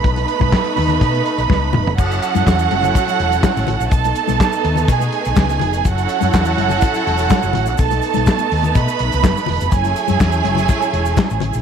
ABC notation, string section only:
X:1
M:4/4
L:1/8
Q:1/4=124
K:F#dor
V:1 name="String section"
[A,B,D]8 | [F,CEA]8 | [A,B,D]8 | [F,CEA]8 |
[A,B,D]8 | [F,A,CE]8 |]